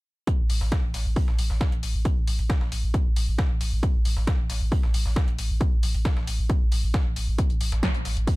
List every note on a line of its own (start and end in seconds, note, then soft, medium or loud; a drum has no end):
0.27 kick loud
0.27 closed hi-hat medium
0.39 0.49 A1 medium
0.50 0.60 A1 loud
0.50 closed hi-hat medium
0.50 open hi-hat loud
0.61 0.72 A1 medium
0.61 snare soft
0.72 kick loud
0.72 snare loud
0.72 closed hi-hat medium
0.83 0.93 A1 medium
0.94 1.05 A1 medium
0.94 snare soft
0.94 closed hi-hat medium
0.94 open hi-hat medium
1.06 1.16 A1 medium
1.16 kick loud
1.16 open hi-hat medium
1.28 1.38 A1 medium
1.28 snare soft
1.38 1.49 A1 loud
1.38 closed hi-hat medium
1.38 open hi-hat loud
1.50 1.61 A1 medium
1.50 snare soft
1.61 kick loud
1.61 snare loud
1.61 closed hi-hat medium
1.72 1.82 A1 medium
1.72 closed hi-hat soft
1.83 1.94 A1 loud
1.83 closed hi-hat medium
1.83 open hi-hat medium
1.94 2.05 A1 medium
2.05 kick loud
2.05 closed hi-hat medium
2.17 2.27 A1 medium
2.27 2.38 A1 loud
2.27 closed hi-hat medium
2.27 open hi-hat loud
2.39 2.49 A1 medium
2.39 closed hi-hat soft
2.50 kick loud
2.50 snare loud
2.50 closed hi-hat medium
2.61 2.71 A1 medium
2.61 snare medium
2.72 2.83 A1 loud
2.72 closed hi-hat medium
2.72 open hi-hat medium
2.83 2.94 A1 medium
2.94 kick loud
2.94 closed hi-hat medium
3.06 3.16 A1 medium
3.16 3.27 A1 loud
3.16 closed hi-hat medium
3.16 open hi-hat loud
3.28 3.38 A1 medium
3.38 kick loud
3.38 snare loud
3.38 closed hi-hat medium
3.50 3.60 A1 medium
3.61 3.72 A1 loud
3.61 closed hi-hat medium
3.61 open hi-hat medium
3.72 3.83 A1 medium
3.83 kick loud
3.83 closed hi-hat medium
3.94 4.05 A1 medium
4.05 4.16 A1 loud
4.05 closed hi-hat medium
4.05 open hi-hat loud
4.17 4.27 A1 medium
4.17 snare soft
4.27 kick loud
4.27 snare loud
4.27 closed hi-hat medium
4.39 4.49 A1 medium
4.50 4.61 A1 loud
4.50 snare soft
4.50 closed hi-hat medium
4.50 open hi-hat loud
4.61 4.72 A1 medium
4.72 kick loud
4.72 open hi-hat medium
4.83 4.93 A1 medium
4.83 snare soft
4.94 5.05 A1 loud
4.94 closed hi-hat medium
4.94 open hi-hat loud
5.05 5.16 A1 medium
5.05 snare soft
5.16 kick loud
5.16 snare loud
5.16 closed hi-hat medium
5.28 5.38 A1 medium
5.28 closed hi-hat soft
5.38 5.49 A1 loud
5.38 closed hi-hat medium
5.38 open hi-hat loud
5.50 5.61 A1 medium
5.61 kick loud
5.61 closed hi-hat medium
5.72 5.82 A1 medium
5.83 5.94 A1 medium
5.83 closed hi-hat medium
5.83 open hi-hat loud
5.94 6.05 A1 medium
5.94 closed hi-hat soft
6.05 kick loud
6.05 snare loud
6.05 closed hi-hat medium
6.17 6.27 A1 medium
6.17 snare medium
6.27 6.38 A1 medium
6.27 closed hi-hat medium
6.27 open hi-hat medium
6.39 6.49 A1 medium
6.50 kick loud
6.50 closed hi-hat medium
6.61 6.71 A1 medium
6.72 6.83 A1 medium
6.72 closed hi-hat medium
6.72 open hi-hat loud
6.83 6.94 A1 medium
6.94 kick loud
6.94 snare loud
6.94 closed hi-hat medium
7.06 7.16 A1 medium
7.16 7.27 A1 loud
7.16 closed hi-hat medium
7.16 open hi-hat medium
7.28 7.38 A1 medium
7.38 kick loud
7.38 closed hi-hat medium
7.50 7.60 A1 medium
7.50 closed hi-hat soft
7.61 7.71 A1 loud
7.61 closed hi-hat medium
7.61 open hi-hat loud
7.72 7.83 A1 medium
7.72 snare soft
7.72 closed hi-hat soft
7.83 kick loud
7.83 snare loud
7.83 closed hi-hat medium
7.94 8.05 A1 medium
7.94 closed hi-hat soft
8.05 8.16 A1 loud
8.05 snare soft
8.05 closed hi-hat medium
8.05 open hi-hat medium
8.17 8.27 A1 medium
8.17 closed hi-hat soft
8.27 kick loud
8.27 closed hi-hat medium
8.27 open hi-hat medium